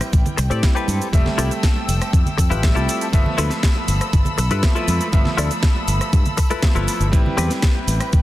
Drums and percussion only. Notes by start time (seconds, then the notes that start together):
0.01 cross-stick, closed hi-hat, tambourine, shaker
0.13 kick, closed hi-hat, tambourine, shaker
0.26 closed hi-hat, low conga, shaker
0.38 open hi-hat, tambourine, shaker
0.50 closed hi-hat, tambourine, shaker
0.63 kick, snare, closed hi-hat, tambourine, shaker
0.76 shaker
0.88 open hi-hat, tambourine, high conga, shaker
1.01 closed hi-hat, tambourine, shaker
1.13 kick, closed hi-hat, tambourine, shaker
1.26 snare, low conga
1.39 cross-stick, open hi-hat, tambourine, shaker
1.51 closed hi-hat, tambourine, shaker
1.63 kick, snare, closed hi-hat, tambourine, shaker
1.76 muted conga
1.88 open hi-hat, tambourine, shaker
2.01 cross-stick, closed hi-hat, tambourine, shaker
2.13 kick, closed hi-hat, tambourine, shaker
2.26 closed hi-hat, low conga, shaker
2.38 kick, open hi-hat, tambourine, shaker
2.51 closed hi-hat, tambourine, muted conga, high conga, shaker
2.63 kick, snare, closed hi-hat, tambourine, shaker
2.77 shaker
2.89 open hi-hat, tambourine, shaker
3.01 closed hi-hat, tambourine, shaker
3.13 kick, closed hi-hat, tambourine, shaker
3.26 low conga
3.38 cross-stick, open hi-hat, tambourine, high conga, shaker
3.51 snare, closed hi-hat, tambourine, shaker
3.63 kick, snare, closed hi-hat, tambourine, shaker
3.76 muted conga
3.88 open hi-hat, tambourine, shaker
4.01 cross-stick, closed hi-hat, tambourine, shaker
4.13 kick, closed hi-hat, tambourine, shaker
4.25 closed hi-hat, low conga, shaker
4.38 open hi-hat, tambourine, shaker
4.51 closed hi-hat, tambourine, shaker
4.63 kick, snare, closed hi-hat, tambourine, shaker
4.76 shaker
4.88 open hi-hat, tambourine, high conga, shaker
5.01 closed hi-hat, tambourine, shaker
5.13 kick, closed hi-hat, tambourine, shaker
5.25 snare, low conga
5.38 cross-stick, open hi-hat, tambourine, shaker
5.51 closed hi-hat, tambourine, shaker
5.63 kick, snare, closed hi-hat, shaker
5.76 muted conga
5.88 open hi-hat, tambourine, shaker
6.01 cross-stick, closed hi-hat, tambourine, shaker
6.13 kick, closed hi-hat, tambourine, shaker
6.26 closed hi-hat, low conga, shaker
6.38 kick, open hi-hat, tambourine, shaker
6.50 closed hi-hat, tambourine, muted conga, high conga, shaker
6.63 kick, snare, closed hi-hat, tambourine, shaker
6.76 closed hi-hat, shaker
6.88 open hi-hat, tambourine, shaker
7.00 closed hi-hat, tambourine, shaker
7.13 kick, closed hi-hat, tambourine, shaker
7.26 low conga
7.38 cross-stick, open hi-hat, tambourine, high conga, shaker
7.50 snare, closed hi-hat, tambourine, shaker
7.62 kick, snare, closed hi-hat, tambourine, shaker
7.75 muted conga
7.87 open hi-hat, tambourine, shaker
8.00 cross-stick, closed hi-hat, tambourine, shaker
8.13 kick, closed hi-hat, tambourine, shaker